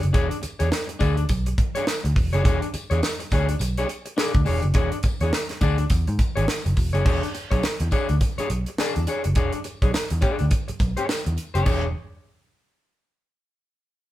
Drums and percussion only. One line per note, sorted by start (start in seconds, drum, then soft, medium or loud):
0.03 closed hi-hat medium
0.14 kick loud
0.14 closed hi-hat medium
0.14 tambourine soft
0.31 closed hi-hat medium
0.43 closed hi-hat medium
0.43 tambourine medium
0.60 closed hi-hat medium
0.72 snare loud
0.72 tambourine loud
0.89 closed hi-hat medium
1.00 kick medium
1.00 closed hi-hat medium
1.00 tambourine medium
1.17 closed hi-hat soft
1.29 kick medium
1.29 closed hi-hat medium
1.29 tambourine medium
1.46 closed hi-hat medium
1.58 kick loud
1.58 closed hi-hat medium
1.75 closed hi-hat medium
1.87 snare loud
1.87 tambourine loud
2.05 closed hi-hat medium
2.16 kick loud
2.16 open hi-hat medium
2.16 tambourine soft
2.33 closed hi-hat medium
2.45 kick loud
2.45 closed hi-hat loud
2.45 tambourine soft
2.62 closed hi-hat medium
2.74 closed hi-hat medium
2.74 tambourine medium
2.91 closed hi-hat soft
3.03 snare loud
3.03 tambourine loud
3.20 closed hi-hat medium
3.30 kick medium
3.30 closed hi-hat medium
3.30 tambourine medium
3.49 closed hi-hat medium
3.59 closed hi-hat loud
3.59 tambourine medium
3.77 closed hi-hat medium
3.88 closed hi-hat medium
3.88 tambourine soft
4.06 closed hi-hat medium
4.18 snare loud
4.18 tambourine loud
4.34 kick loud
4.34 closed hi-hat medium
4.45 open hi-hat medium
4.45 tambourine medium
4.62 closed hi-hat soft
4.74 kick loud
4.74 closed hi-hat medium
4.92 closed hi-hat medium
5.03 kick medium
5.03 closed hi-hat medium
5.03 tambourine medium
5.21 closed hi-hat medium
5.33 snare loud
5.33 tambourine loud
5.49 snare soft
5.49 closed hi-hat medium
5.61 kick medium
5.61 closed hi-hat medium
5.61 tambourine medium
5.78 closed hi-hat soft
5.90 kick loud
5.90 closed hi-hat loud
5.90 tambourine medium
6.07 closed hi-hat soft
6.19 kick loud
6.19 closed hi-hat medium
6.19 tambourine soft
6.37 closed hi-hat medium
6.48 snare loud
6.48 tambourine loud
6.66 closed hi-hat medium
6.76 kick medium
6.76 open hi-hat medium
6.76 tambourine soft
6.95 closed hi-hat medium
7.06 kick loud
7.06 crash medium
7.23 closed hi-hat medium
7.35 closed hi-hat medium
7.35 tambourine medium
7.51 kick medium
7.51 closed hi-hat medium
7.63 snare loud
7.63 tambourine medium
7.80 closed hi-hat medium
7.91 kick medium
7.91 closed hi-hat medium
7.91 tambourine medium
8.09 closed hi-hat soft
8.20 kick medium
8.20 closed hi-hat loud
8.20 tambourine medium
8.38 closed hi-hat medium
8.50 closed hi-hat medium
8.66 closed hi-hat medium
8.78 snare loud
8.78 tambourine loud
8.96 closed hi-hat medium
9.07 closed hi-hat medium
9.07 tambourine soft
9.24 closed hi-hat medium
9.35 kick loud
9.35 closed hi-hat medium
9.53 closed hi-hat medium
9.64 closed hi-hat medium
9.64 tambourine medium
9.82 kick medium
9.82 closed hi-hat medium
9.94 snare loud
9.94 tambourine loud
10.10 closed hi-hat medium
10.21 kick medium
10.21 closed hi-hat medium
10.21 tambourine medium
10.39 closed hi-hat soft
10.50 kick loud
10.50 closed hi-hat medium
10.50 tambourine medium
10.68 closed hi-hat medium
10.79 kick loud
10.79 closed hi-hat medium
10.79 tambourine soft
10.97 closed hi-hat medium
11.09 snare loud
11.09 tambourine loud
11.26 closed hi-hat medium
11.37 closed hi-hat medium
11.37 tambourine soft
11.55 closed hi-hat medium
11.66 kick loud
11.66 crash medium
11.66 tambourine medium